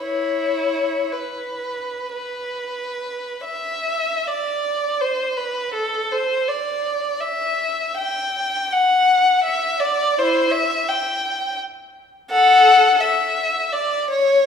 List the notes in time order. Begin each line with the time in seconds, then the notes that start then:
0.03 E4 C#5
1.12 B4
2.13 B4
3.45 E5
4.27 D5
5.01 C5
5.37 B4
5.73 A4
6.12 C5
6.48 D5
7.21 E5
7.97 G5
8.73 F#5
9.43 E5
9.80 D5
10.18 E4 C5
10.52 E5
10.88 G5
12.31 A4 F#5
13.00 E5
13.72 D5
14.11 C#5